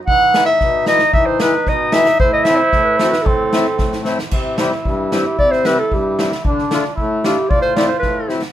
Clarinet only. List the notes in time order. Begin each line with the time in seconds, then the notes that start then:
0.06 F#5
0.46 E5
0.88 D#5
1.13 E5
1.26 C5
1.41 B4
1.69 D#5
1.93 E5
2.20 C5
2.33 D#5
2.44 E5
2.57 C5
2.84 B4
2.98 C5
3.10 B4
3.22 A4
5.12 G4
5.39 D5
5.51 C5
5.66 B4
5.79 A4
5.94 G4
7.24 G4
7.50 D5
7.62 C5
7.76 D5
7.88 C5
7.99 B4